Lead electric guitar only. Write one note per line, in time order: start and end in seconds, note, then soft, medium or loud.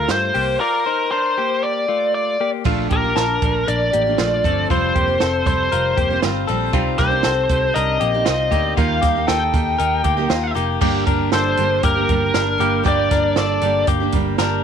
0.00 0.11 A#4 medium
0.11 0.60 C5 medium
0.60 1.11 A#4 loud
1.11 1.64 C5 medium
1.63 2.13 D5 loud
2.14 2.50 D5 medium
2.92 3.68 A#4 medium
3.69 4.66 D5 loud
4.71 5.46 C5 medium
5.47 6.19 C5 medium
6.99 7.78 C5 medium
7.74 8.73 D#5 medium
8.78 9.26 F5 loud
9.28 10.52 G5 medium
11.34 11.81 C5 medium
11.85 12.83 A#4 medium
12.88 13.34 D5 loud
13.38 13.85 D5 medium